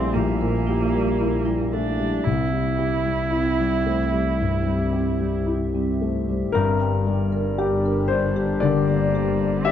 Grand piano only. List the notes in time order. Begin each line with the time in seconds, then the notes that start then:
Already playing: A#1 G3 A3 E4 G4
0.16 A#1
0.41 A#2
0.69 G4
0.94 G3
1.20 E4
1.47 G3
1.73 A3
2.00 G3
2.26 C2
2.52 G3
2.78 G4
3.05 G3
3.30 E4
3.59 G3
3.86 A3
4.13 G3
4.41 G2
4.65 G3
4.93 G4
5.20 G3
5.46 E4
5.74 G3
6.01 A3
6.28 G3
6.52 G2 A#4
7.07 G3
7.58 G4
8.08 D4 C5
8.60 D3 D5
9.14 G3
9.65 G4 E5